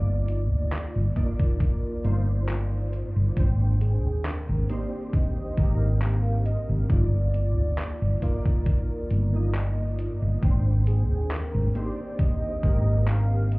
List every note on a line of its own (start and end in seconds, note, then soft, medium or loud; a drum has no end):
0.00 0.51 G1 medium
0.00 3.33 D#3 medium
0.00 1.11 A#3 medium
0.00 13.59 A#3 medium
0.00 1.11 D#4 medium
0.00 1.12 F4 medium
0.00 3.33 F4 medium
0.00 1.12 D5 medium
0.00 1.18 D5 loud
0.00 3.33 D5 medium
0.28 closed hi-hat medium
0.51 0.77 D2 medium
0.72 clap loud
0.72 closed hi-hat medium
0.96 1.08 G1 loud
1.15 1.99 A#3 medium
1.15 1.99 D#4 medium
1.15 2.00 F4 medium
1.15 2.93 A#4 loud
1.15 2.00 D5 medium
1.15 kick medium
1.15 closed hi-hat medium
1.40 kick loud
1.60 kick loud
1.60 closed hi-hat medium
2.04 3.02 G1 medium
2.04 2.41 A#3 medium
2.04 2.42 D#4 medium
2.04 2.42 F4 medium
2.04 2.42 C5 loud
2.04 closed hi-hat medium
2.49 clap loud
2.49 closed hi-hat medium
2.93 closed hi-hat medium
3.16 3.29 G1 medium
3.36 4.05 G#1 medium
3.36 6.86 D#3 medium
3.36 4.64 A#3 medium
3.36 6.86 C4 medium
3.36 4.64 D4 medium
3.36 4.65 C5 medium
3.36 6.86 G5 medium
3.36 4.65 G5 medium
3.36 kick loud
3.36 closed hi-hat medium
3.81 4.27 G#4 medium
3.81 closed hi-hat medium
4.05 4.30 D#2 medium
4.25 4.71 A#4 loud
4.25 clap loud
4.25 closed hi-hat medium
4.49 4.61 G#1 loud
4.69 5.52 A#3 medium
4.69 5.53 D#4 medium
4.69 5.53 G4 medium
4.69 5.53 C5 medium
4.69 5.15 D5 loud
4.69 closed hi-hat medium
5.13 6.03 D#5 loud
5.13 kick loud
5.13 closed hi-hat medium
5.57 6.55 G#1 medium
5.57 5.95 A#3 medium
5.57 5.95 D#4 medium
5.57 5.95 G4 medium
5.57 5.95 A#4 loud
5.57 kick loud
5.57 closed hi-hat medium
6.01 6.45 F5 loud
6.01 clap loud
6.01 closed hi-hat medium
6.46 6.60 D#5 loud
6.46 closed hi-hat medium
6.69 6.82 G#1 medium
6.89 7.58 G1 medium
6.89 10.39 D#3 medium
6.89 8.17 A#3 medium
6.89 8.17 D#4 medium
6.89 10.39 F4 medium
6.89 8.18 F4 medium
6.89 8.24 D5 loud
6.89 8.18 D5 medium
6.89 kick loud
6.89 closed hi-hat medium
7.34 closed hi-hat medium
7.58 7.83 D2 medium
7.78 clap loud
7.78 closed hi-hat medium
8.02 8.14 G1 loud
8.22 9.05 A#3 medium
8.22 9.05 D#4 medium
8.22 9.06 F4 medium
8.22 9.99 A#4 loud
8.22 9.06 D5 medium
8.22 kick medium
8.22 closed hi-hat medium
8.46 kick loud
8.66 kick loud
8.66 closed hi-hat medium
9.11 10.08 G1 medium
9.11 closed hi-hat medium
9.33 10.37 A#3 medium
9.33 10.38 D#4 medium
9.33 10.38 F4 medium
9.33 10.39 D#5 medium
9.55 clap loud
9.55 closed hi-hat medium
9.99 closed hi-hat medium
10.22 10.35 G1 medium
10.41 11.11 G#1 medium
10.41 13.59 D#3 medium
10.41 11.70 A#3 medium
10.41 13.59 C4 medium
10.41 11.70 D4 medium
10.41 11.71 C5 medium
10.41 13.59 G5 medium
10.41 11.71 G5 medium
10.41 kick loud
10.41 closed hi-hat medium
10.87 11.32 G#4 medium
10.87 closed hi-hat medium
11.11 11.36 D#2 medium
11.31 11.76 A#4 loud
11.31 clap loud
11.31 closed hi-hat medium
11.54 11.67 G#1 loud
11.74 12.58 A#3 medium
11.74 12.58 D#4 medium
11.74 12.59 G4 medium
11.74 12.59 C5 loud
11.74 12.20 D5 loud
11.74 closed hi-hat medium
12.19 13.09 D#5 loud
12.19 kick loud
12.19 closed hi-hat medium
12.63 13.59 G#1 medium
12.63 13.00 A#3 medium
12.63 13.01 D#4 medium
12.63 13.01 G4 medium
12.63 13.01 A#4 loud
12.63 kick loud
12.63 closed hi-hat medium
13.07 13.53 F5 loud
13.07 clap loud
13.07 closed hi-hat medium
13.51 13.59 D#5 loud
13.51 closed hi-hat medium